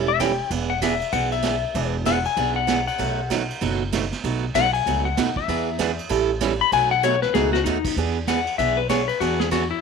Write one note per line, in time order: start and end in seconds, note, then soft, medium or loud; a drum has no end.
0.00 0.38 E1 medium
0.08 0.20 E5 loud
0.20 0.31 E3 medium
0.20 0.31 G3 medium
0.20 0.31 C#4 medium
0.20 0.31 E4 medium
0.20 0.31 A4 medium
0.20 0.50 G5 loud
0.20 kick soft
0.20 snare medium
0.20 hi-hat pedal medium
0.20 ride medium
0.50 1.00 E1 medium
0.50 0.71 E3 medium
0.50 0.71 B3 medium
0.50 0.71 D4 medium
0.50 0.71 G#4 medium
0.50 kick soft
0.50 ride medium
0.70 0.81 F#5 medium
0.82 0.93 E3 medium
0.82 0.93 B3 medium
0.82 0.93 D4 medium
0.82 0.94 G#4 medium
0.82 1.12 E5 loud
0.82 kick soft
0.82 snare medium
0.82 hi-hat pedal medium
0.82 ride medium
1.01 ride soft
1.12 1.63 B1 medium
1.12 1.33 E3 medium
1.12 1.33 B3 medium
1.12 1.33 D4 medium
1.12 1.33 G#4 medium
1.12 1.31 F#5 loud
1.12 kick soft
1.12 ride medium
1.32 1.92 E5 loud
1.32 ride medium
1.43 1.54 E3 medium
1.43 1.54 B3 medium
1.43 1.55 D4 medium
1.43 1.55 G#4 medium
1.43 kick soft
1.43 snare medium
1.43 hi-hat pedal medium
1.43 ride medium
1.74 2.25 E1 loud
1.74 1.95 E3 medium
1.74 1.95 B3 medium
1.74 1.96 D4 medium
1.74 1.96 G#4 medium
1.74 kick soft
1.74 ride medium
2.05 2.17 E3 medium
2.05 2.17 B3 medium
2.05 2.17 D4 medium
2.05 2.18 G#4 medium
2.05 2.25 F#5 loud
2.05 kick soft
2.05 snare medium
2.05 hi-hat pedal medium
2.05 ride medium
2.25 2.56 G#5 medium
2.25 ride medium
2.37 2.87 B1 medium
2.37 2.57 E3 medium
2.37 2.58 B3 medium
2.37 2.58 D4 medium
2.37 2.58 G#4 medium
2.37 kick soft
2.37 ride medium
2.56 2.86 F#5 loud
2.67 2.79 E3 medium
2.67 2.79 B3 medium
2.67 2.79 D4 medium
2.67 2.80 G#4 medium
2.67 kick soft
2.67 snare medium
2.67 hi-hat pedal medium
2.67 ride medium
2.87 3.78 F#5 medium
2.87 ride medium
2.98 3.49 B1 medium
2.98 3.19 B2 medium
2.98 3.20 F#3 medium
2.98 3.20 A3 medium
2.98 3.20 D#4 medium
2.98 3.20 F#4 medium
2.98 kick soft
2.98 ride medium
3.30 3.41 B2 medium
3.30 3.42 F#3 medium
3.30 3.42 A3 medium
3.30 3.42 D#4 medium
3.30 3.42 F#4 medium
3.30 kick soft
3.30 snare medium
3.30 hi-hat pedal medium
3.30 ride medium
3.50 ride medium
3.61 4.11 F#1 medium
3.61 3.82 B2 medium
3.61 3.82 F#3 medium
3.61 3.82 A3 medium
3.61 3.82 D#4 medium
3.61 3.82 F#4 medium
3.61 kick soft
3.61 ride medium
3.92 4.04 B2 medium
3.92 4.04 F#3 medium
3.92 4.04 A3 medium
3.92 4.04 D#4 medium
3.92 4.04 F#4 medium
3.92 kick soft
3.92 snare medium
3.92 hi-hat pedal medium
3.92 ride medium
4.12 snare soft
4.12 ride medium
4.24 4.49 B1 medium
4.24 4.44 B2 medium
4.24 4.44 F#3 medium
4.24 4.45 A3 medium
4.24 4.44 D#4 medium
4.24 4.45 F#4 medium
4.24 kick soft
4.24 ride medium
4.55 4.81 B1 loud
4.55 4.66 B2 medium
4.55 4.66 F#3 medium
4.55 4.66 A3 medium
4.55 4.66 D#4 medium
4.55 4.67 F#4 medium
4.55 4.73 F#5 loud
4.55 kick soft
4.55 snare medium
4.55 hi-hat pedal medium
4.55 ride medium
4.73 5.04 G#5 loud
4.73 ride medium
4.86 5.12 C#2 medium
4.86 5.07 B2 medium
4.86 5.07 F#3 medium
4.86 5.07 A3 medium
4.86 5.07 D#4 medium
4.86 5.07 F#4 medium
4.86 kick soft
4.86 ride medium
5.05 5.35 F#5 medium
5.17 5.44 D#2 medium
5.17 5.28 B2 medium
5.17 5.29 F#3 medium
5.17 5.29 A3 medium
5.17 5.29 D#4 medium
5.17 5.29 F#4 medium
5.17 kick soft
5.17 snare medium
5.17 hi-hat pedal medium
5.17 ride medium
5.36 6.27 E5 loud
5.36 kick medium
5.48 5.98 E2 loud
5.48 5.69 E3 medium
5.48 5.69 B3 medium
5.48 5.69 D4 medium
5.48 5.69 G#4 medium
5.48 kick soft
5.48 ride medium
5.79 5.90 E3 medium
5.79 5.90 B3 medium
5.79 5.90 D4 loud
5.79 5.90 G#4 loud
5.79 kick soft
5.79 snare medium
5.79 hi-hat pedal medium
5.79 ride medium
5.99 ride medium
6.09 6.60 A1 loud
6.09 6.30 E3 medium
6.09 6.30 G3 medium
6.09 6.30 C#4 medium
6.09 6.30 E4 medium
6.09 6.31 A4 medium
6.09 kick soft
6.09 ride medium
6.41 6.52 E3 medium
6.41 6.52 G3 medium
6.41 6.52 C#4 medium
6.41 6.52 E4 medium
6.41 6.53 A4 medium
6.41 kick soft
6.41 snare medium
6.41 hi-hat pedal medium
6.41 ride medium
6.61 6.72 B5 loud
6.72 7.22 B1 loud
6.72 6.92 B2 medium
6.72 6.92 F#3 medium
6.72 6.93 A3 medium
6.72 6.93 D#4 medium
6.72 6.93 F#4 medium
6.72 6.91 G#5 loud
6.72 kick soft
6.72 ride medium
6.91 7.03 F#5 loud
7.03 7.14 B2 medium
7.03 7.14 F#3 medium
7.03 7.15 A3 medium
7.03 7.15 D#4 medium
7.03 7.15 F#4 medium
7.03 7.22 C#5 loud
7.03 hi-hat pedal medium
7.22 7.34 B4 loud
7.22 snare medium
7.34 7.61 C#2 medium
7.34 7.55 B2 medium
7.34 7.55 F#3 medium
7.34 7.55 A3 medium
7.34 7.55 D#4 medium
7.34 7.55 F#4 medium
7.34 7.53 G#4 loud
7.34 snare medium
7.53 7.65 F#4 loud
7.53 snare medium
7.64 7.92 D#2 medium
7.64 7.77 B2 medium
7.64 7.77 F#3 medium
7.64 7.77 A3 medium
7.64 7.95 D#4 loud
7.64 7.77 D#4 medium
7.64 7.77 F#4 medium
7.64 snare medium
7.64 hi-hat pedal medium
7.85 kick medium
7.85 crash medium
7.97 8.46 E2 medium
7.97 8.17 E3 medium
7.97 8.17 B3 medium
7.97 8.18 D4 medium
7.97 8.18 G#4 medium
7.97 kick soft
8.27 8.39 E3 medium
8.27 8.39 B3 medium
8.27 8.39 D4 medium
8.27 8.39 G#4 medium
8.27 8.58 F#5 medium
8.27 kick soft
8.27 snare medium
8.27 hi-hat pedal medium
8.27 ride medium
8.46 ride medium
8.58 9.08 B1 medium
8.58 8.79 E3 medium
8.58 8.79 B3 medium
8.58 8.79 D4 medium
8.58 8.80 G#4 medium
8.58 8.77 E5 medium
8.58 kick soft
8.58 ride medium
8.77 8.89 B4 medium
8.89 9.01 E3 medium
8.89 9.01 B3 medium
8.89 9.01 D4 medium
8.89 9.01 G#4 medium
8.89 9.08 C#5 medium
8.89 kick soft
8.89 snare medium
8.89 hi-hat pedal medium
8.89 ride medium
9.08 9.20 B4 medium
9.08 ride soft
9.20 9.70 E2 medium
9.20 9.41 E3 medium
9.20 9.41 B3 medium
9.20 9.41 D4 medium
9.20 9.39 F#4 medium
9.20 9.42 G#4 medium
9.20 kick soft
9.20 ride medium
9.40 9.51 G#4 medium
9.40 snare medium
9.51 9.63 E3 medium
9.51 9.63 B3 medium
9.51 9.63 D4 medium
9.51 9.70 F#4 medium
9.51 9.63 G#4 medium
9.51 kick soft
9.51 snare medium
9.51 hi-hat pedal medium
9.51 ride medium
9.71 9.81 E4 loud